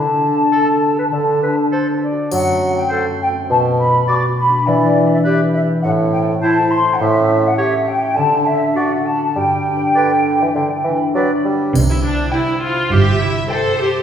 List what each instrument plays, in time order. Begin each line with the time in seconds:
Already playing: bassoon D3, harp D3 G4, flute section A5
0.13 harp D4
0.33 harp A4
0.52 oboe A4, clarinet A4, harp D5
0.73 harp A4
0.93 harp G4
0.99 clarinet B4
1.11 harp D3, bassoon D3, clarinet A4
1.33 harp D4
1.43 clarinet B4
1.53 harp A4
1.71 oboe A4, clarinet C5, harp D5
1.92 harp A4
2.02 clarinet D5
2.12 harp F#4
2.32 harp F#2, bassoon F#3, flute section F#5, triangle
2.52 harp A3
2.71 harp F#4
2.78 flute section G5
2.89 harp A4, clarinet A4, oboe C5, flute section F#5
3.11 harp F#4
3.21 flute section G5
3.31 harp C4
3.50 bassoon B2, harp B2, flute section A5
3.71 harp B3
3.79 flute section B5
3.90 harp F#4
4.07 clarinet F#4, harp B4, oboe D5, flute section D6
4.29 harp F#4
4.37 flute section B5
4.48 harp D4
4.67 harp E3, bassoon E3, flute section D5
4.87 harp E4
5.07 harp B4
5.13 flute section E5
5.24 clarinet G4, oboe B4, flute section D5, harp E5
5.46 harp B4
5.54 flute section E5
5.65 harp G4
5.83 harp A2, bassoon A2, flute section F#5
6.03 harp C4
6.12 flute section G5
6.23 harp A4
6.41 clarinet E4, oboe C5, harp C5, flute section A5
6.62 harp A4
6.71 flute section C6
6.81 harp E4
6.93 flute section F#5
7.00 harp A2, bassoon A2, flute section E5
7.20 harp C#4
7.39 harp A4
7.47 flute section F#5
7.58 clarinet G4, oboe C#5, harp C#5, flute section E5
7.79 harp A4
7.88 flute section G5
7.99 harp G4
8.16 bassoon D3, harp D3, flute section A5
8.37 harp D4
8.46 flute section E5
8.57 harp A4
8.76 clarinet F#4, oboe D5, harp D5, flute section F#5
8.96 harp A4
9.05 flute section A5
9.15 harp F#4
9.36 harp G2, bassoon G3, flute section G5
9.56 harp D4
9.76 harp B4
9.95 bassoon D3, clarinet B4, oboe D5, harp D5
10.16 harp B4
10.36 harp G4
10.42 bassoon E3
10.55 bassoon D3, harp D3
10.76 harp D4
10.84 bassoon E3
10.96 harp B4
11.15 bassoon F#3, clarinet B4, oboe D5, harp D5
11.35 harp B4
11.45 bassoon G3
11.55 harp G4
11.74 double bass section C2, cello section C3, harp C3, triangle
11.91 viola section E4
11.95 harp G3
12.04 viola section D4
12.14 harp E4
12.33 viola section E4, harp G4, violin section G5
12.53 harp C5
12.63 viola section F4
12.72 harp G4
12.91 double bass section G1, cello section G2, harp C3, viola section G4, violin section E5
13.11 harp G3
13.20 viola section E4
13.30 harp E4
13.50 harp G4, viola section A4, violin section C5 G5
13.69 harp C5
13.80 viola section G4
13.88 harp G4